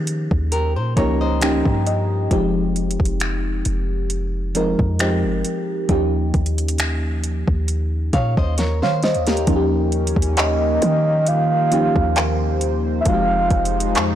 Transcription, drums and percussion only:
0.07 closed hi-hat
0.31 kick
0.52 closed hi-hat
0.97 kick, closed hi-hat
1.41 finger snap, closed hi-hat
1.66 kick
1.87 closed hi-hat
2.31 kick, closed hi-hat
2.76 closed hi-hat
2.91 closed hi-hat
3.00 kick
3.05 closed hi-hat
3.20 finger snap, closed hi-hat
3.65 closed hi-hat
4.10 closed hi-hat
4.55 closed hi-hat
4.79 kick
4.99 finger snap, closed hi-hat
5.45 closed hi-hat
5.89 kick, closed hi-hat
6.34 kick, closed hi-hat
6.46 closed hi-hat
6.58 closed hi-hat
6.68 closed hi-hat
6.78 finger snap, closed hi-hat
7.24 closed hi-hat
7.48 kick
7.68 closed hi-hat
8.13 kick, closed hi-hat
8.37 kick
8.58 snare, closed hi-hat
8.83 snare
9.03 snare, closed hi-hat
9.15 closed hi-hat
9.27 snare, closed hi-hat
9.37 closed hi-hat
9.47 kick, closed hi-hat
9.92 closed hi-hat
10.07 closed hi-hat
10.16 kick
10.22 closed hi-hat
10.37 clap, closed hi-hat
10.82 closed hi-hat
11.27 closed hi-hat
11.72 closed hi-hat
11.96 kick
12.16 clap, closed hi-hat
12.61 closed hi-hat
13.05 kick, closed hi-hat
13.51 kick, closed hi-hat
13.65 closed hi-hat
13.80 closed hi-hat
13.95 clap, closed hi-hat

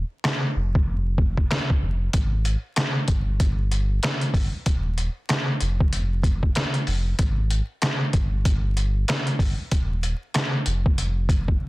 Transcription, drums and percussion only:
0.25 snare, clap
0.75 kick
1.18 kick
1.38 kick
1.51 snare, clap
1.70 kick
2.13 kick, closed hi-hat
2.45 closed hi-hat
2.76 snare, clap, closed hi-hat
3.08 kick, closed hi-hat
3.40 kick, closed hi-hat
3.71 closed hi-hat
4.03 snare, clap, closed hi-hat
4.21 closed hi-hat
4.34 kick, open hi-hat
4.66 kick, closed hi-hat
4.98 closed hi-hat
5.29 snare, clap, closed hi-hat
5.60 closed hi-hat
5.80 kick
5.93 closed hi-hat
6.23 kick, closed hi-hat
6.43 kick
6.55 snare, clap, closed hi-hat
6.74 closed hi-hat
6.87 open hi-hat
7.19 kick, closed hi-hat
7.50 closed hi-hat
7.82 snare, clap, closed hi-hat
8.13 kick, closed hi-hat
8.45 kick, closed hi-hat
8.77 closed hi-hat
9.08 snare, clap, closed hi-hat
9.27 closed hi-hat
9.39 kick, open hi-hat
9.71 kick, closed hi-hat
10.03 closed hi-hat
10.34 snare, clap, closed hi-hat
10.66 closed hi-hat
10.86 kick
10.98 closed hi-hat
11.29 kick, closed hi-hat
11.48 kick

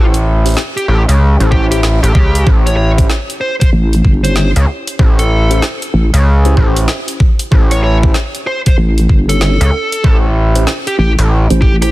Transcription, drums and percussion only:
0.14 closed hi-hat
0.46 closed hi-hat
0.49 closed hi-hat
0.50 closed hi-hat
0.52 closed hi-hat
0.54 closed hi-hat
0.55 snare, closed hi-hat
0.78 closed hi-hat
1.09 closed hi-hat
1.41 closed hi-hat
1.52 kick
1.72 closed hi-hat
1.83 snare
2.04 closed hi-hat
2.15 kick
2.35 closed hi-hat
2.47 kick
2.67 closed hi-hat
2.98 kick, closed hi-hat
3.10 cross-stick, snare
3.30 closed hi-hat
3.61 kick, closed hi-hat
3.93 closed hi-hat
4.05 kick
4.24 closed hi-hat
4.36 snare
4.56 closed hi-hat
4.87 closed hi-hat
4.99 kick
5.19 closed hi-hat
5.51 closed hi-hat
5.62 cross-stick, snare
5.82 closed hi-hat
6.14 closed hi-hat
6.45 closed hi-hat
6.57 kick
6.76 closed hi-hat
6.88 snare
7.08 closed hi-hat
7.20 kick
7.39 closed hi-hat
7.52 kick
7.71 closed hi-hat
8.03 kick
8.14 cross-stick, snare
8.35 closed hi-hat
8.66 kick, closed hi-hat
8.98 closed hi-hat
9.09 kick
9.29 closed hi-hat
9.41 snare
9.61 closed hi-hat
9.92 closed hi-hat
10.04 kick
10.56 closed hi-hat
10.67 cross-stick, snare
10.87 closed hi-hat
11.19 closed hi-hat
11.50 closed hi-hat
11.62 kick
11.82 cross-stick, closed hi-hat

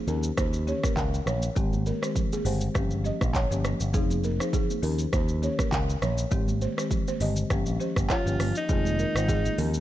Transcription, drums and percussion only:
0.08 shaker
0.23 shaker
0.37 kick, cross-stick, shaker
0.53 shaker
0.68 high conga, shaker
0.83 kick, cross-stick, high conga, shaker
0.97 kick, clap, shaker
1.14 shaker
1.27 cross-stick, high conga, low conga, shaker
1.42 shaker
1.56 kick, low conga, shaker
1.73 high conga, shaker
1.86 high conga, shaker
2.03 cross-stick, shaker
2.16 kick, low conga, shaker
2.33 high conga, shaker
2.45 open hi-hat, shaker
2.61 shaker
2.75 kick, cross-stick, shaker
2.91 shaker
3.05 high conga, shaker
3.21 kick, cross-stick, high conga, shaker
3.35 kick, clap, shaker
3.52 shaker
3.65 cross-stick, high conga, low conga, shaker
3.80 shaker
3.94 kick, low conga, shaker
4.10 high conga, shaker
4.24 high conga, shaker
4.40 cross-stick, shaker
4.53 kick, low conga, shaker
4.70 high conga, shaker
4.83 open hi-hat, shaker
4.99 shaker
5.13 kick, cross-stick, shaker
5.29 shaker
5.43 high conga, shaker
5.59 kick, cross-stick, high conga, shaker
5.72 kick, clap, shaker
5.90 shaker
6.02 cross-stick, high conga, low conga, shaker
6.18 shaker
6.31 kick, low conga, shaker
6.48 high conga, shaker
6.61 high conga, shaker
6.78 cross-stick, shaker
6.91 kick, low conga, shaker
7.08 high conga, shaker
7.21 open hi-hat, shaker
7.36 shaker
7.50 kick, cross-stick, shaker
7.66 shaker
7.80 high conga, shaker
7.96 kick, cross-stick, high conga, shaker
8.10 kick, cross-stick, clap, shaker
8.27 shaker
8.40 cross-stick, open hi-hat, high conga, low conga, shaker
8.55 shaker
8.69 kick, low conga, shaker
8.85 high conga, shaker
8.99 high conga, shaker
9.16 cross-stick, shaker
9.28 kick, low conga, shaker
9.46 high conga, shaker
9.58 open hi-hat, low conga, shaker
9.74 shaker

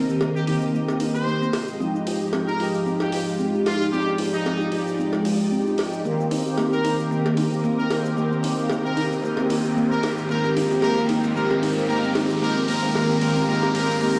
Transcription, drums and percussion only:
0.08 mid tom, shaker
0.21 cowbell, shaker
0.36 shaker
0.47 open hi-hat, mid tom
0.61 shaker
0.74 mid tom, shaker
0.89 cowbell, shaker
1.00 open hi-hat
1.15 shaker
1.28 shaker
1.42 shaker
1.53 open hi-hat, mid tom, cowbell
1.67 shaker
1.80 mid tom, shaker
1.95 shaker
2.07 open hi-hat
2.21 mid tom, shaker
2.33 cowbell, shaker
2.48 shaker
2.60 open hi-hat, mid tom
2.74 shaker
2.86 mid tom, shaker
3.00 cowbell, shaker
3.12 open hi-hat
3.29 shaker
3.40 shaker
3.55 shaker
3.66 open hi-hat, mid tom, cowbell
3.81 shaker
3.92 mid tom, shaker
4.07 shaker
4.18 open hi-hat
4.33 mid tom, shaker
4.46 cowbell, shaker
4.60 shaker
4.72 open hi-hat, mid tom
4.87 shaker
4.98 mid tom, shaker
5.13 cowbell, shaker
5.25 open hi-hat
5.40 shaker
5.52 shaker
5.67 shaker
5.78 open hi-hat, mid tom, cowbell
5.93 shaker
6.05 mid tom, shaker
6.20 shaker
6.31 open hi-hat, mid tom
6.46 shaker
6.58 mid tom, cowbell, shaker
6.72 shaker
6.84 open hi-hat, mid tom
6.99 shaker
7.11 mid tom, shaker
7.25 cowbell, shaker
7.37 open hi-hat, mid tom
7.53 shaker
7.64 mid tom, shaker
7.79 shaker
7.91 open hi-hat, mid tom, cowbell
8.05 shaker
8.17 mid tom, shaker
8.32 shaker
8.43 open hi-hat, mid tom
8.59 shaker
8.70 mid tom, cowbell, shaker
8.86 shaker
8.97 open hi-hat, mid tom
9.12 shaker
9.24 mid tom, shaker
9.37 cowbell, shaker
9.50 open hi-hat, mid tom
9.65 shaker
9.77 mid tom, shaker
9.92 shaker
10.03 open hi-hat, mid tom, cowbell
10.18 shaker
10.29 mid tom, shaker
10.44 mid tom, shaker
10.57 open hi-hat, mid tom
10.71 mid tom, shaker
10.82 mid tom, cowbell, shaker
10.97 mid tom, shaker
11.09 open hi-hat, mid tom
11.24 mid tom, shaker
11.36 mid tom, shaker
11.50 mid tom, cowbell, shaker
11.62 open hi-hat, mid tom
11.77 mid tom, shaker
11.89 mid tom, shaker
12.03 mid tom, shaker
12.15 open hi-hat, mid tom, cowbell
12.30 mid tom, shaker
12.43 mid tom, shaker
12.50 mid tom
12.56 mid tom, shaker
12.63 mid tom
12.68 open hi-hat, mid tom
12.76 mid tom
12.83 mid tom, shaker
12.90 mid tom
12.95 mid tom, cowbell, shaker
13.03 mid tom
13.10 mid tom, shaker
13.16 mid tom
13.21 open hi-hat, mid tom
13.29 mid tom
13.35 mid tom, shaker
13.43 mid tom
13.49 mid tom, shaker
13.56 mid tom
13.63 mid tom, cowbell, shaker
13.68 mid tom
13.75 open hi-hat, mid tom
13.82 mid tom
13.90 mid tom, shaker
13.96 mid tom
14.01 mid tom, shaker
14.09 mid tom
14.16 mid tom

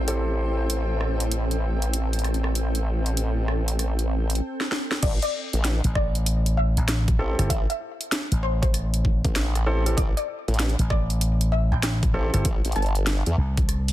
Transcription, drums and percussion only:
0.08 closed hi-hat
0.70 closed hi-hat
1.01 cross-stick
1.20 closed hi-hat
1.32 closed hi-hat
1.51 closed hi-hat
1.82 closed hi-hat
1.93 closed hi-hat
2.13 closed hi-hat
2.19 closed hi-hat
2.24 cross-stick, closed hi-hat
2.34 closed hi-hat
2.44 cross-stick
2.55 closed hi-hat
2.75 closed hi-hat
3.06 closed hi-hat
3.17 closed hi-hat
3.48 cross-stick
3.68 closed hi-hat
3.79 cross-stick, closed hi-hat
3.99 closed hi-hat
4.30 closed hi-hat
4.35 closed hi-hat
4.61 snare
4.72 snare
4.91 snare
5.03 kick, closed hi-hat, crash
5.22 closed hi-hat
5.53 closed hi-hat
5.64 snare, closed hi-hat
5.84 closed hi-hat
5.95 kick, cross-stick
6.15 closed hi-hat
6.26 closed hi-hat
6.46 closed hi-hat
6.77 closed hi-hat
6.88 snare, closed hi-hat
7.08 kick, closed hi-hat
7.19 cross-stick
7.39 cross-stick, closed hi-hat
7.50 kick, closed hi-hat
7.70 closed hi-hat
8.01 closed hi-hat
8.12 snare, closed hi-hat
8.32 closed hi-hat
8.63 kick, closed hi-hat
8.74 cross-stick, closed hi-hat
8.94 closed hi-hat
9.05 kick
9.25 kick, closed hi-hat
9.36 snare, closed hi-hat
9.55 cross-stick, closed hi-hat
9.86 closed hi-hat
9.98 kick, closed hi-hat
10.17 closed hi-hat
10.48 closed hi-hat
10.54 closed hi-hat
10.59 snare, closed hi-hat
10.69 closed hi-hat
10.79 closed hi-hat
10.90 kick, cross-stick
11.10 closed hi-hat
11.21 closed hi-hat
11.41 closed hi-hat
11.83 snare, closed hi-hat
12.03 kick, closed hi-hat
12.14 cross-stick
12.34 cross-stick, closed hi-hat
12.45 kick, closed hi-hat
12.65 closed hi-hat
12.72 closed hi-hat
12.76 closed hi-hat
12.82 closed hi-hat
12.86 closed hi-hat
12.95 closed hi-hat
13.07 snare, closed hi-hat
13.26 closed hi-hat
13.57 kick, closed hi-hat
13.69 cross-stick, closed hi-hat
13.88 closed hi-hat

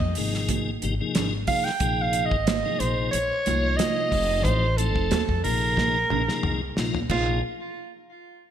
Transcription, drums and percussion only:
0.00 kick
0.15 open hi-hat
0.34 snare
0.49 kick, closed hi-hat, muted conga, high conga
0.82 closed hi-hat, muted conga
1.15 snare, closed hi-hat, low conga
1.47 kick, open hi-hat, high conga
1.66 snare
1.80 kick, closed hi-hat, muted conga
2.13 closed hi-hat
2.31 kick
2.47 snare, closed hi-hat, muted conga, high conga
2.80 closed hi-hat
3.13 closed hi-hat, muted conga
3.46 closed hi-hat, muted conga, high conga
3.79 snare, closed hi-hat, high conga
4.12 kick, open hi-hat
4.45 kick, closed hi-hat, muted conga
4.78 closed hi-hat
4.96 kick
5.11 snare, closed hi-hat, muted conga, high conga
5.29 kick
5.44 open hi-hat
5.77 kick, snare, muted conga, high conga
6.10 mid tom, muted conga, low conga
6.29 snare
6.43 mid tom
6.77 snare, high conga
6.95 floor tom
7.10 kick, crash, muted conga

